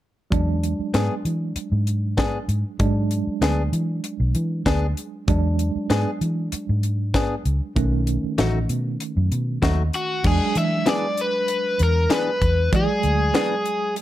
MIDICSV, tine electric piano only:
0, 0, Header, 1, 2, 480
1, 0, Start_track
1, 0, Tempo, 619835
1, 247, Time_signature, 4, 2, 24, 8
1, 10856, End_track
2, 0, Start_track
2, 0, Title_t, "Tine electric piano"
2, 0, Program_c, 0, 4
2, 236, Note_on_c, 0, 54, 61
2, 244, Note_on_c, 0, 56, 53
2, 249, Note_on_c, 0, 62, 67
2, 2133, Note_off_c, 0, 54, 0
2, 2137, Note_off_c, 0, 56, 0
2, 2140, Note_off_c, 0, 62, 0
2, 2163, Note_on_c, 0, 54, 58
2, 2169, Note_on_c, 0, 56, 58
2, 2173, Note_on_c, 0, 62, 67
2, 4057, Note_off_c, 0, 54, 0
2, 4060, Note_off_c, 0, 56, 0
2, 4062, Note_off_c, 0, 62, 0
2, 4085, Note_on_c, 0, 54, 59
2, 4092, Note_on_c, 0, 56, 59
2, 4097, Note_on_c, 0, 62, 69
2, 5978, Note_off_c, 0, 54, 0
2, 5981, Note_off_c, 0, 56, 0
2, 5984, Note_off_c, 0, 62, 0
2, 6007, Note_on_c, 0, 51, 65
2, 6012, Note_on_c, 0, 57, 56
2, 6017, Note_on_c, 0, 61, 67
2, 7898, Note_off_c, 0, 51, 0
2, 7901, Note_off_c, 0, 57, 0
2, 7904, Note_off_c, 0, 61, 0
2, 7927, Note_on_c, 0, 54, 58
2, 7932, Note_on_c, 0, 56, 55
2, 7937, Note_on_c, 0, 62, 60
2, 9818, Note_off_c, 0, 54, 0
2, 9820, Note_off_c, 0, 56, 0
2, 9823, Note_off_c, 0, 62, 0
2, 9852, Note_on_c, 0, 54, 60
2, 9858, Note_on_c, 0, 56, 54
2, 9865, Note_on_c, 0, 74, 66
2, 10856, Note_off_c, 0, 54, 0
2, 10856, Note_off_c, 0, 56, 0
2, 10856, Note_off_c, 0, 74, 0
2, 10856, End_track
0, 0, End_of_file